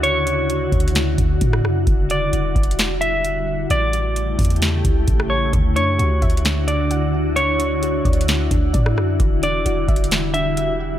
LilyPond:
<<
  \new Staff \with { instrumentName = "Clean electric guitar" } { \time 4/4 \key d \major \tempo 4 = 131 cis''2 r2 | r8 d''2 e''4. | d''2 r4. cis''8 | r8 cis''2 d''4. |
cis''2 r2 | r8 d''2 e''4. | }
  \new Staff \with { instrumentName = "Synth pluck" } { \time 4/4 \key d \major r1 | r1 | r1 | d8 d'8 fis'8 e''8 d8 d'8 fis''4 |
d8 d'8 fis'8 d''8 d8 d'8 d''4 | e8 d'8 fis'8 e''8 e8 d'8 e''4 | }
  \new Staff \with { instrumentName = "Ambient pad" } { \time 4/4 \key d \major << { <d e' fis'>1~ | <d e' fis'>1 | <cis e' g'>1 | <d e' fis'>1~ |
<d e' fis'>1~ | <d e' fis'>1 | } \\ { cis1 | g1 | a1 | d'1~ |
d'1 | g1 | } >> }
  \new Staff \with { instrumentName = "808-style bass" } { \clef bass \time 4/4 \key d \major d,4. d,4 d,8 a,8 fis,8 | e,,4 e,,8 e,,2~ e,,8 | a,,4. e,4 cis,8 a,,4 | d,8 fis,8 d,8 d,2~ d,8~ |
d,4. d,4 d,8 a,8 fis,8 | e,,4 e,,8 e,,2~ e,,8 | }
  \new DrumStaff \with { instrumentName = "Drums" } \drummode { \time 4/4 hh8 hh8 \tuplet 3/2 { hh16 r16 r16 <hh bd>16 hh16 hh16 } <hh sn>8 <hh bd>8 <hh bd>16 ss16 ss8 | <hh bd>8 hh8 \tuplet 3/2 { hh16 r16 r16 <hh bd>16 hh16 hh16 } <hh sn>8 hh8 hh4 | hh8 hh8 hh8 <hh hho bd>32 hh32 hh32 hh32 <hh sn>8 <hh bd>8 <hh bd>16 ss8. | <hh bd>8 hh8 \tuplet 3/2 { hh16 r16 r16 <hh bd>16 hh16 hh16 } <hh sn>8 hh8 hh4 |
hh8 hh8 \tuplet 3/2 { hh16 r16 r16 <hh bd>16 hh16 hh16 } <hh sn>8 <hh bd>8 <hh bd>16 ss16 ss8 | <hh bd>8 hh8 \tuplet 3/2 { hh16 r16 r16 <hh bd>16 hh16 hh16 } <hh sn>8 hh8 hh4 | }
>>